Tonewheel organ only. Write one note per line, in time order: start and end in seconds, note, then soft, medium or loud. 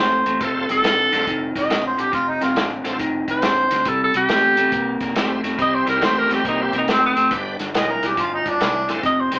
0.41 0.67 A3 medium
0.41 0.67 C4 medium
0.41 0.67 F4 medium
0.41 0.67 A4 medium
0.41 0.67 C5 medium
1.12 1.26 A3 medium
1.12 1.26 C4 medium
1.12 1.26 F4 medium
1.12 1.26 A4 medium
1.12 1.26 D5 medium
2.85 2.98 A3 medium
2.85 2.98 C4 medium
2.85 2.98 F4 medium
2.85 2.98 A4 medium
2.85 2.99 C5 medium
5.15 5.41 G3 medium
5.15 5.41 C4 medium
5.15 5.41 E4 medium
5.15 5.41 G4 medium
5.15 5.41 C5 medium
5.58 6.79 G3 medium
5.58 6.79 C4 medium
5.58 6.79 E4 medium
5.58 6.79 G4 medium
5.58 6.79 C5 medium
7.31 7.57 G3 medium
7.31 7.57 B3 medium
7.31 7.57 D4 medium
7.31 7.57 G4 medium
7.31 7.57 B4 medium
8.89 9.02 A3 medium
8.89 9.02 C4 medium
8.89 9.02 F4 medium
8.89 9.03 A4 medium
8.89 9.02 C5 medium